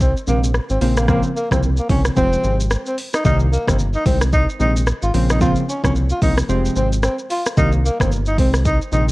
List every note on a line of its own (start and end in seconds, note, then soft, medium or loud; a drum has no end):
0.00 0.15 C2 loud
0.00 0.14 C4 medium
0.00 kick loud
0.00 shaker medium
0.17 shaker medium
0.27 0.60 A#1 medium
0.27 0.49 C3 medium
0.27 0.49 D#3 medium
0.27 0.49 G#3 medium
0.27 0.41 A#3 medium
0.27 0.49 C4 medium
0.27 shaker medium
0.44 shaker loud
0.54 cross-stick medium
0.54 shaker medium
0.70 0.79 G#1 medium
0.70 0.80 C4 medium
0.70 shaker medium
0.81 1.23 A#1 loud
0.81 1.07 C#3 medium
0.81 1.07 F3 medium
0.81 1.07 A#3 medium
0.81 1.07 C4 loud
0.81 open hi-hat medium
0.81 shaker medium
0.97 1.07 A#3 medium
0.97 cross-stick medium
0.97 shaker loud
1.08 1.30 C#3 medium
1.08 1.30 F3 medium
1.08 1.30 A#3 medium
1.08 1.22 A#3 loud
1.08 1.30 C4 loud
1.08 kick loud
1.08 cross-stick medium
1.08 shaker medium
1.23 shaker soft
1.36 1.49 A#3 medium
1.36 shaker medium
1.51 1.81 C2 medium
1.51 1.70 C#3 medium
1.51 1.70 F3 medium
1.51 1.71 A#3 medium
1.51 1.71 C4 medium
1.51 1.61 C4 medium
1.51 kick medium
1.51 cross-stick medium
1.51 shaker medium
1.63 shaker medium
1.77 1.88 A#3 medium
1.77 shaker soft
1.89 2.10 C2 medium
1.89 2.11 C#3 medium
1.89 2.11 F3 medium
1.89 2.11 A#3 medium
1.89 2.11 C4 medium
1.89 2.03 C#4 medium
1.89 kick loud
1.89 open hi-hat medium
1.89 shaker medium
2.05 cross-stick medium
2.05 shaker medium
2.16 2.38 F1 loud
2.16 2.42 C3 medium
2.16 2.42 F3 medium
2.16 2.42 G#3 medium
2.16 2.42 C4 loud
2.16 2.57 C4 loud
2.16 kick loud
2.16 shaker medium
2.33 shaker medium
2.44 2.77 G#1 medium
2.44 2.65 C3 medium
2.44 2.65 F3 medium
2.44 2.65 G#3 medium
2.44 2.65 C4 medium
2.44 shaker medium
2.60 shaker loud
2.70 cross-stick medium
2.70 shaker medium
2.86 2.96 C4 medium
2.86 shaker medium
2.98 open hi-hat medium
2.98 shaker soft
3.14 3.23 D#4 medium
3.14 cross-stick medium
3.14 shaker loud
3.24 3.58 C2 loud
3.24 3.46 C3 loud
3.24 3.46 D#3 medium
3.24 3.46 G3 medium
3.24 3.46 A#3 loud
3.24 3.38 D#4 loud
3.24 kick loud
3.24 shaker medium
3.39 shaker soft
3.52 3.65 A#3 medium
3.52 shaker medium
3.67 3.97 G1 medium
3.67 3.87 C3 medium
3.67 3.87 D#3 medium
3.67 3.87 G3 medium
3.67 3.87 A#3 medium
3.67 3.78 C4 medium
3.67 kick loud
3.67 cross-stick medium
3.67 shaker medium
3.79 shaker medium
3.93 4.05 D#4 medium
3.93 shaker soft
4.06 4.47 C2 loud
4.06 4.27 C3 medium
4.06 4.27 D#3 medium
4.06 4.27 G#3 medium
4.06 4.19 C4 medium
4.06 4.27 C4 medium
4.06 kick loud
4.06 open hi-hat medium
4.06 shaker medium
4.21 cross-stick medium
4.21 shaker loud
4.33 4.47 D#4 medium
4.33 kick loud
4.33 shaker medium
4.49 shaker soft
4.60 4.93 A#1 medium
4.60 4.81 C3 medium
4.60 4.81 D#3 medium
4.60 4.81 G#3 medium
4.60 4.81 C4 medium
4.60 4.74 D#4 medium
4.60 shaker medium
4.76 shaker loud
4.87 cross-stick medium
4.87 shaker medium
5.02 5.11 G#1 medium
5.02 5.13 F4 medium
5.02 shaker medium
5.14 5.55 A#1 loud
5.14 5.39 C#3 medium
5.14 5.39 F3 medium
5.14 5.39 A#3 medium
5.14 5.39 C4 loud
5.14 open hi-hat medium
5.14 shaker soft
5.30 5.40 D#4 medium
5.30 cross-stick medium
5.30 shaker loud
5.41 5.62 C#3 loud
5.41 5.62 F3 medium
5.41 5.62 A#3 medium
5.41 5.62 C4 loud
5.41 5.55 F4 loud
5.41 kick loud
5.41 shaker medium
5.56 shaker medium
5.69 5.82 C#4 medium
5.69 shaker medium
5.83 6.13 C2 medium
5.83 6.03 C#3 medium
5.83 6.03 F3 medium
5.83 6.03 A#3 medium
5.83 6.03 C4 medium
5.83 5.94 C#4 medium
5.83 kick loud
5.83 cross-stick medium
5.83 shaker loud
5.95 shaker medium
6.10 6.21 F4 medium
6.10 shaker soft
6.22 6.43 C2 medium
6.22 6.43 C#3 medium
6.22 6.43 F3 medium
6.22 6.44 A#3 medium
6.22 6.44 C4 medium
6.22 6.36 D#4 medium
6.22 kick loud
6.22 open hi-hat medium
6.22 shaker medium
6.38 cross-stick medium
6.38 shaker loud
6.49 6.70 F1 loud
6.49 6.74 C3 loud
6.49 6.74 F3 medium
6.49 6.74 G#3 medium
6.49 6.75 C4 loud
6.49 shaker medium
6.65 shaker medium
6.76 7.09 G#1 medium
6.76 6.97 C3 medium
6.76 6.98 F3 medium
6.76 6.98 G#3 medium
6.76 6.98 C4 medium
6.76 6.90 C4 medium
6.76 shaker medium
6.93 shaker loud
7.03 7.17 C4 medium
7.03 cross-stick medium
7.03 shaker medium
7.19 shaker medium
7.30 7.44 F4 medium
7.30 open hi-hat medium
7.30 shaker soft
7.46 cross-stick medium
7.46 shaker loud
7.57 7.90 C2 loud
7.57 7.78 C3 medium
7.57 7.79 D#3 medium
7.57 7.79 G3 medium
7.57 7.79 A#3 loud
7.57 7.71 D#4 medium
7.57 kick loud
7.57 shaker medium
7.72 shaker soft
7.85 7.98 A#3 medium
7.85 shaker medium
8.00 8.40 G1 medium
8.00 8.19 C3 medium
8.00 8.19 D#3 medium
8.00 8.19 G3 medium
8.00 8.19 A#3 medium
8.00 8.10 C4 medium
8.00 kick medium
8.00 cross-stick medium
8.00 shaker medium
8.12 shaker medium
8.26 8.37 D#4 medium
8.26 shaker soft
8.38 8.80 C2 loud
8.38 8.60 C3 medium
8.38 8.60 D#3 medium
8.38 8.60 G#3 medium
8.38 8.60 C4 medium
8.38 8.52 C4 medium
8.38 kick loud
8.38 open hi-hat medium
8.38 shaker medium
8.54 cross-stick medium
8.54 shaker loud
8.65 8.79 D#4 medium
8.65 kick loud
8.65 shaker medium
8.82 shaker medium
8.92 9.12 A#1 medium
8.92 9.12 C3 medium
8.92 9.12 D#3 medium
8.92 9.12 G#3 medium
8.92 9.12 C4 medium
8.92 9.06 D#4 medium
8.92 shaker medium